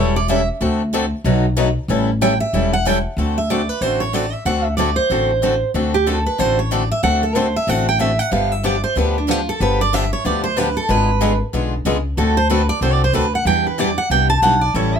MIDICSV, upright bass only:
0, 0, Header, 1, 2, 480
1, 0, Start_track
1, 0, Tempo, 321199
1, 912, Time_signature, 4, 2, 24, 8
1, 22410, End_track
2, 0, Start_track
2, 0, Title_t, "Upright bass"
2, 0, Program_c, 0, 32
2, 0, Note_on_c, 0, 28, 76
2, 715, Note_off_c, 0, 28, 0
2, 907, Note_on_c, 0, 38, 91
2, 1675, Note_off_c, 0, 38, 0
2, 1859, Note_on_c, 0, 35, 88
2, 2629, Note_off_c, 0, 35, 0
2, 2814, Note_on_c, 0, 33, 96
2, 3586, Note_off_c, 0, 33, 0
2, 3784, Note_on_c, 0, 28, 78
2, 4551, Note_off_c, 0, 28, 0
2, 4731, Note_on_c, 0, 38, 90
2, 5503, Note_off_c, 0, 38, 0
2, 5694, Note_on_c, 0, 33, 73
2, 6466, Note_off_c, 0, 33, 0
2, 6654, Note_on_c, 0, 38, 89
2, 7427, Note_off_c, 0, 38, 0
2, 7617, Note_on_c, 0, 33, 77
2, 8389, Note_off_c, 0, 33, 0
2, 8583, Note_on_c, 0, 38, 88
2, 9353, Note_off_c, 0, 38, 0
2, 9549, Note_on_c, 0, 33, 82
2, 10318, Note_off_c, 0, 33, 0
2, 10503, Note_on_c, 0, 38, 88
2, 11275, Note_off_c, 0, 38, 0
2, 11461, Note_on_c, 0, 33, 75
2, 12235, Note_off_c, 0, 33, 0
2, 12428, Note_on_c, 0, 31, 90
2, 13200, Note_off_c, 0, 31, 0
2, 13384, Note_on_c, 0, 38, 75
2, 14158, Note_off_c, 0, 38, 0
2, 14350, Note_on_c, 0, 31, 93
2, 15122, Note_off_c, 0, 31, 0
2, 15310, Note_on_c, 0, 38, 83
2, 16082, Note_off_c, 0, 38, 0
2, 16271, Note_on_c, 0, 32, 88
2, 17043, Note_off_c, 0, 32, 0
2, 17235, Note_on_c, 0, 35, 81
2, 17645, Note_off_c, 0, 35, 0
2, 17707, Note_on_c, 0, 37, 79
2, 18121, Note_off_c, 0, 37, 0
2, 18190, Note_on_c, 0, 38, 94
2, 18962, Note_off_c, 0, 38, 0
2, 19142, Note_on_c, 0, 36, 82
2, 19557, Note_off_c, 0, 36, 0
2, 19621, Note_on_c, 0, 38, 77
2, 20037, Note_off_c, 0, 38, 0
2, 20102, Note_on_c, 0, 40, 90
2, 20876, Note_off_c, 0, 40, 0
2, 21068, Note_on_c, 0, 36, 79
2, 21480, Note_off_c, 0, 36, 0
2, 21550, Note_on_c, 0, 35, 80
2, 21961, Note_off_c, 0, 35, 0
2, 22031, Note_on_c, 0, 33, 92
2, 22410, Note_off_c, 0, 33, 0
2, 22410, End_track
0, 0, End_of_file